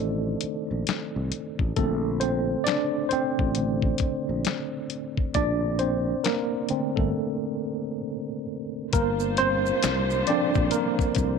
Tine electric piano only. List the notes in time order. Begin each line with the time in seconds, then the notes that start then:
Already playing: D#3 A3 C4 D4 D#4 A4 C5 D5
1.76 D3 A3 C4 A4
2.20 C4 C5
2.64 D4 D5
3.09 C4 C5
3.56 D3 A3 C4
5.35 D4 D5
5.79 C4 C5
6.24 A#3 A#4
6.69 D3 A3 C4
6.96 A3 A4
8.93 A#3 A#4
9.38 C4 C5
10.28 F3 C4 D4 A4 D5
10.72 A#3 A#4